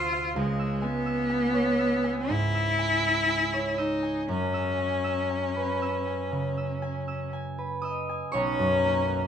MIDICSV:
0, 0, Header, 1, 3, 480
1, 0, Start_track
1, 0, Tempo, 933126
1, 186, Time_signature, 4, 2, 24, 8
1, 666, Tempo, 990099
1, 1626, Tempo, 1013514
1, 4026, Tempo, 978793
1, 4481, End_track
2, 0, Start_track
2, 0, Title_t, "Harp"
2, 0, Program_c, 0, 46
2, 0, Note_on_c, 0, 38, 63
2, 0, Note_on_c, 0, 72, 47
2, 0, Note_on_c, 0, 77, 53
2, 0, Note_on_c, 0, 84, 44
2, 0, Note_on_c, 0, 86, 50
2, 0, Note_on_c, 0, 88, 44
2, 59, Note_off_c, 0, 77, 0
2, 65, Note_on_c, 0, 77, 48
2, 66, Note_off_c, 0, 84, 0
2, 186, Note_on_c, 0, 37, 62
2, 204, Note_off_c, 0, 38, 0
2, 204, Note_off_c, 0, 86, 0
2, 205, Note_off_c, 0, 72, 0
2, 205, Note_off_c, 0, 77, 0
2, 299, Note_off_c, 0, 88, 0
2, 306, Note_on_c, 0, 88, 49
2, 421, Note_on_c, 0, 80, 47
2, 539, Note_off_c, 0, 88, 0
2, 545, Note_on_c, 0, 88, 48
2, 659, Note_off_c, 0, 80, 0
2, 666, Note_on_c, 0, 80, 44
2, 780, Note_on_c, 0, 73, 42
2, 898, Note_off_c, 0, 88, 0
2, 903, Note_on_c, 0, 88, 49
2, 1021, Note_off_c, 0, 80, 0
2, 1027, Note_on_c, 0, 80, 47
2, 1151, Note_on_c, 0, 44, 43
2, 1266, Note_off_c, 0, 88, 0
2, 1272, Note_on_c, 0, 88, 49
2, 1384, Note_off_c, 0, 80, 0
2, 1390, Note_on_c, 0, 80, 45
2, 1502, Note_off_c, 0, 88, 0
2, 1508, Note_on_c, 0, 88, 41
2, 1623, Note_off_c, 0, 80, 0
2, 1629, Note_on_c, 0, 80, 45
2, 1743, Note_off_c, 0, 73, 0
2, 1748, Note_on_c, 0, 73, 46
2, 1860, Note_off_c, 0, 88, 0
2, 1866, Note_on_c, 0, 88, 35
2, 1976, Note_off_c, 0, 80, 0
2, 1981, Note_on_c, 0, 80, 41
2, 2093, Note_off_c, 0, 37, 0
2, 2104, Note_on_c, 0, 42, 51
2, 2120, Note_off_c, 0, 44, 0
2, 2218, Note_off_c, 0, 88, 0
2, 2224, Note_on_c, 0, 88, 46
2, 2335, Note_off_c, 0, 80, 0
2, 2341, Note_on_c, 0, 80, 38
2, 2457, Note_off_c, 0, 88, 0
2, 2463, Note_on_c, 0, 88, 40
2, 2581, Note_off_c, 0, 80, 0
2, 2587, Note_on_c, 0, 80, 38
2, 2708, Note_on_c, 0, 71, 40
2, 2826, Note_off_c, 0, 88, 0
2, 2831, Note_on_c, 0, 88, 44
2, 2941, Note_off_c, 0, 80, 0
2, 2947, Note_on_c, 0, 80, 41
2, 3067, Note_on_c, 0, 49, 39
2, 3182, Note_off_c, 0, 88, 0
2, 3188, Note_on_c, 0, 88, 43
2, 3300, Note_off_c, 0, 80, 0
2, 3305, Note_on_c, 0, 80, 43
2, 3421, Note_off_c, 0, 88, 0
2, 3427, Note_on_c, 0, 88, 38
2, 3541, Note_off_c, 0, 80, 0
2, 3546, Note_on_c, 0, 80, 43
2, 3595, Note_off_c, 0, 73, 0
2, 3661, Note_off_c, 0, 71, 0
2, 3666, Note_on_c, 0, 71, 40
2, 3777, Note_on_c, 0, 87, 65
2, 3782, Note_off_c, 0, 88, 0
2, 3783, Note_on_c, 0, 75, 51
2, 3788, Note_on_c, 0, 88, 36
2, 3902, Note_off_c, 0, 80, 0
2, 3908, Note_on_c, 0, 80, 39
2, 3951, Note_off_c, 0, 42, 0
2, 4014, Note_on_c, 0, 85, 91
2, 4021, Note_on_c, 0, 73, 65
2, 4027, Note_on_c, 0, 35, 58
2, 4043, Note_off_c, 0, 49, 0
2, 4045, Note_off_c, 0, 80, 0
2, 4045, Note_off_c, 0, 88, 0
2, 4149, Note_on_c, 0, 42, 46
2, 4269, Note_on_c, 0, 58, 39
2, 4389, Note_on_c, 0, 61, 44
2, 4481, Note_off_c, 0, 35, 0
2, 4481, Note_off_c, 0, 42, 0
2, 4481, Note_off_c, 0, 58, 0
2, 4481, Note_off_c, 0, 61, 0
2, 4481, Note_off_c, 0, 71, 0
2, 4481, Note_off_c, 0, 73, 0
2, 4481, Note_off_c, 0, 75, 0
2, 4481, Note_off_c, 0, 85, 0
2, 4481, Note_off_c, 0, 87, 0
2, 4481, End_track
3, 0, Start_track
3, 0, Title_t, "Cello"
3, 0, Program_c, 1, 42
3, 0, Note_on_c, 1, 65, 92
3, 186, Note_off_c, 1, 65, 0
3, 189, Note_on_c, 1, 56, 78
3, 424, Note_on_c, 1, 59, 94
3, 432, Note_off_c, 1, 56, 0
3, 1153, Note_on_c, 1, 64, 101
3, 1160, Note_off_c, 1, 59, 0
3, 1863, Note_on_c, 1, 63, 73
3, 1870, Note_off_c, 1, 64, 0
3, 2102, Note_off_c, 1, 63, 0
3, 2107, Note_on_c, 1, 61, 83
3, 3528, Note_off_c, 1, 61, 0
3, 4025, Note_on_c, 1, 61, 82
3, 4481, Note_off_c, 1, 61, 0
3, 4481, End_track
0, 0, End_of_file